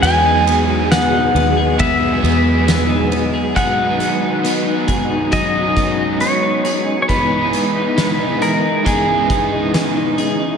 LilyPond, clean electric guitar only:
\new Staff \with { instrumentName = "Clean electric guitar" } { \time 4/4 \key b \major \tempo 4 = 68 b16 dis'16 b16 dis'16 b16 dis'16 b16 gis'16 b8 b8 b16 dis'16 b16 gis'16 | <fis gis'>16 dis'16 b16 dis'16 b16 dis'16 gis'16 dis'16 <fis gis'>16 dis'16 b16 dis'16 b16 dis'16 gis'16 dis'16 | <b gis'>16 dis'16 b16 dis'16 b16 dis'16 gis'16 dis'16 <b gis'>16 dis'16 b16 dis'16 b16 dis'16 gis'16 dis'16 | }